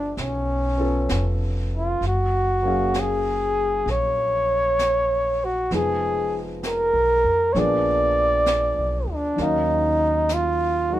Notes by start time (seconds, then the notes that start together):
Already playing: G1 F3 A3 B3 D4 G4 E5
0.17 B1, brush sweep, snare
0.22 C#4
0.78 B3 C#4 F4 A4
1.09 F1, brush sweep, snare, hi-hat pedal
1.76 F4
2.01 F#1, brush sweep, snare
2.07 F#4
2.63 F#3 A#3 C#4 F5
2.67 G#4
2.94 brush sweep, snare, hi-hat pedal
3.00 G#4
3.86 A#1, brush sweep, snare
3.91 C#5
4.79 brush sweep, snare, hi-hat pedal
5.44 F#4
5.71 F1 F3 G#3 B3 D#4 G#4, brush sweep, snare
5.75 G#4
6.63 A#4, brush sweep, snare, hi-hat pedal
6.93 B1
7.24 F2
7.53 A#1 F3 A#3 B3 D4 G#4 C#5, brush sweep, snare
7.59 D5
8.46 brush sweep, snare, hi-hat pedal
8.78 B1
9.07 D2
9.12 D4
9.36 D#2 D#3 F#3 A#3, brush sweep, snare
9.40 C#4 D#4 F5
10.29 brush sweep, snare, hi-hat pedal
10.33 F4
10.90 F#3 G#3 A#3 D#4 F#4